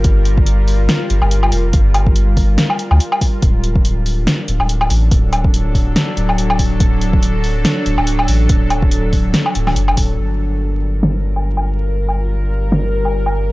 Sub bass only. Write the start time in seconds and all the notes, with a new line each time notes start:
0.04 G1
1.10 G1
1.22 G1
1.52 F1
1.74 G1
2.91 D2
3.43 D1
4.48 D1
4.60 D1
4.90 A1
5.11 D1
6.17 D1
6.80 D1
7.86 D1
7.98 D1
8.28 A1
8.49 D1
9.55 D1
9.76 F#1
9.97 D1
10.19 G1